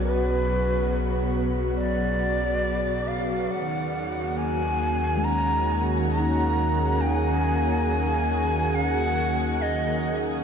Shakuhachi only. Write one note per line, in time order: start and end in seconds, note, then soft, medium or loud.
0.02 1.46 B4 medium
1.76 3.09 D5 loud
3.07 3.52 F5 medium
3.50 4.39 F#5 medium
4.38 5.26 G#5 loud
5.24 5.85 A#5 loud
6.11 7.03 A#5 loud
7.01 7.13 G5 loud
7.13 8.76 G#5 loud
8.75 9.63 F#5 loud
9.62 10.21 D#5 medium